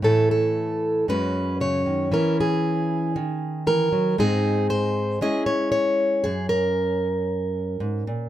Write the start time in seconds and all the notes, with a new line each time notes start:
0.02 A2 E3 A3 E4 A4
0.31 A4
1.08 F#2 G#3 C#4 F#4 B4
1.61 C#3 C#5
1.86 D#3
2.12 E3 C#4 E4 A#4
2.40 G#4
3.16 D#3
3.67 E3 A#4
3.92 F#3
4.18 G#2 G#3 C4 D#4 G#4
4.70 C5
5.21 G#3 C#4 E4 G#4 D#5
5.46 C#5
5.72 C#5
6.24 F#2 G#4
6.49 A#4
7.80 G#2
8.07 A#2